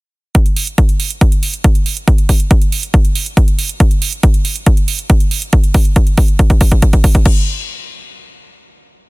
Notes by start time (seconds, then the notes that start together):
0.35 kick, closed hi-hat
0.46 closed hi-hat
0.56 open hi-hat
0.67 closed hi-hat
0.78 kick, closed hi-hat
0.89 closed hi-hat
1.00 open hi-hat
1.10 closed hi-hat
1.21 kick, closed hi-hat
1.32 closed hi-hat
1.43 open hi-hat
1.54 closed hi-hat
1.64 kick, closed hi-hat
1.75 closed hi-hat
1.86 open hi-hat
1.97 closed hi-hat
2.08 kick, closed hi-hat
2.18 closed hi-hat
2.29 kick, open hi-hat
2.40 closed hi-hat
2.51 kick, closed hi-hat
2.62 closed hi-hat
2.72 open hi-hat
2.83 closed hi-hat
2.94 kick, closed hi-hat
3.05 closed hi-hat
3.15 open hi-hat
3.26 closed hi-hat
3.37 kick, closed hi-hat
3.48 closed hi-hat
3.59 open hi-hat
3.69 closed hi-hat
3.80 kick, closed hi-hat
3.91 closed hi-hat
4.02 open hi-hat
4.13 closed hi-hat
4.23 kick, closed hi-hat
4.34 closed hi-hat
4.45 open hi-hat
4.56 closed hi-hat
4.66 kick, closed hi-hat
4.77 closed hi-hat
4.88 open hi-hat
4.99 closed hi-hat
5.10 kick, closed hi-hat
5.20 closed hi-hat
5.31 open hi-hat
5.42 closed hi-hat
5.53 kick, closed hi-hat
5.64 closed hi-hat
5.74 kick, open hi-hat
5.85 closed hi-hat
5.96 kick, closed hi-hat
6.07 closed hi-hat
6.17 kick, open hi-hat
6.28 closed hi-hat
6.39 kick, closed hi-hat
6.50 kick, closed hi-hat
6.61 kick, open hi-hat
6.71 kick, closed hi-hat
6.82 kick, closed hi-hat
6.93 kick, closed hi-hat
7.04 kick, open hi-hat
7.15 kick, closed hi-hat
7.25 kick, crash